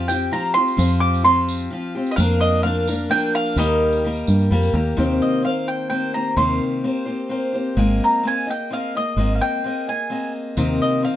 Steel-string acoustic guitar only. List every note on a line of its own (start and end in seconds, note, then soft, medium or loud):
0.09 0.32 C4 soft
0.09 0.32 F4 soft
0.09 0.32 G4 soft
0.31 0.55 F3 medium
0.31 0.56 C4 medium
0.31 0.55 F4 medium
0.31 0.54 G4 medium
0.55 0.77 C4 soft
0.55 0.77 F4 soft
0.55 0.78 G4 medium
0.77 1.23 F3 medium
0.77 1.23 C4 medium
0.77 1.25 F4 medium
0.77 1.24 G4 medium
1.24 1.69 F3 medium
1.24 1.70 C4 medium
1.24 1.72 F4 medium
1.24 1.71 G4 medium
1.70 1.95 F3 medium
1.70 1.95 C4 medium
1.70 1.94 F4 medium
1.70 1.94 G4 medium
1.95 2.19 C4 soft
1.95 2.18 F4 medium
1.95 2.18 G4 medium
2.19 2.63 F3 medium
2.19 2.64 A#3 medium
2.19 2.65 D4 medium
2.19 2.66 A#4 medium
2.64 2.88 F3 medium
2.64 2.88 A#3 medium
2.64 2.87 D4 medium
2.64 2.87 A#4 medium
2.88 3.08 A#3 soft
2.88 3.10 D4 medium
2.88 3.10 A#4 medium
3.09 3.57 F3 medium
3.09 3.57 A#3 medium
3.09 3.58 D4 medium
3.09 3.58 A#4 medium
3.57 4.04 D#3 medium
3.57 4.03 G3 medium
3.57 4.04 A#3 medium
3.57 4.04 G4 medium
3.57 4.05 A#4 medium
4.04 4.49 G3 medium
4.04 4.51 A#3 medium
4.04 4.51 G4 medium
4.04 4.52 A#4 medium
4.51 4.74 G3 medium
4.51 4.74 A#3 medium
4.51 4.74 G4 medium
4.51 4.72 A#4 medium
4.73 4.97 A#3 soft
4.73 4.97 G4 medium
4.73 4.97 A#4 medium
4.97 5.44 C3 medium
4.97 6.37 D#3 medium
4.97 5.44 A#3 medium
4.97 5.42 C4 medium
4.97 5.44 G4 medium
4.97 5.44 C5 medium
5.42 5.90 A#3 medium
5.42 5.89 C4 medium
5.42 5.90 G4 medium
5.42 5.92 C5 medium
5.90 6.14 A#3 medium
5.90 6.14 C4 medium
5.90 6.14 G4 medium
5.90 6.13 C5 medium
6.14 6.36 A#3 soft
6.14 6.36 C4 soft
6.14 6.37 G4 soft
6.14 6.37 C5 soft
6.36 6.84 C3 medium
6.36 6.84 D#3 medium
6.36 6.84 A#3 medium
6.36 6.84 C4 medium
6.36 6.84 G4 medium
6.36 6.85 C5 medium
6.84 7.07 A#3 medium
6.84 7.07 C4 medium
6.84 7.05 G4 medium
6.84 7.04 C5 medium
7.06 7.29 A#3 soft
7.06 7.28 C4 soft
7.06 7.30 G4 medium
7.06 7.30 C5 medium
7.29 7.54 A#3 medium
7.29 7.53 C4 medium
7.29 7.53 G4 medium
7.29 7.52 C5 medium
7.53 7.76 A#3 soft
7.53 7.76 C4 soft
7.53 7.78 G4 soft
7.53 7.77 C5 soft
7.77 8.24 G#3 medium
7.77 8.23 A#3 medium
7.77 8.23 C4 medium
7.77 8.24 G#4 medium
7.77 8.25 D#5 medium
8.23 8.47 A#3 medium
8.23 8.47 C4 medium
8.23 8.47 G#4 medium
8.23 8.46 D#5 medium
8.47 8.70 A#3 soft
8.47 8.71 G#4 soft
8.47 8.71 D#5 soft
8.70 8.94 A#3 medium
8.70 8.94 C4 medium
8.70 8.95 G#4 medium
8.70 8.94 D#5 medium
8.95 9.17 A#3 soft
8.95 9.17 G#4 soft
8.95 9.18 D#5 soft
9.17 9.64 G#3 medium
9.17 9.65 A#3 medium
9.17 9.64 C4 medium
9.17 9.65 G#4 medium
9.17 9.66 D#5 medium
9.64 9.88 A#3 medium
9.64 9.88 C4 medium
9.64 9.88 G#4 medium
9.64 9.87 D#5 medium
9.88 10.09 A#3 soft
9.88 10.11 G#4 soft
9.88 10.11 D#5 soft
10.10 10.58 A#3 medium
10.10 10.57 C4 medium
10.10 10.57 G#4 medium
10.10 10.57 D#5 medium
10.57 11.04 C3 medium
10.57 11.16 D#3 medium
10.57 11.04 A#3 medium
10.57 11.02 C4 medium
10.57 11.03 G4 medium
10.57 11.05 D#5 medium
11.03 11.16 A#3 medium
11.03 11.16 C4 medium
11.03 11.16 G4 medium
11.03 11.16 D#5 medium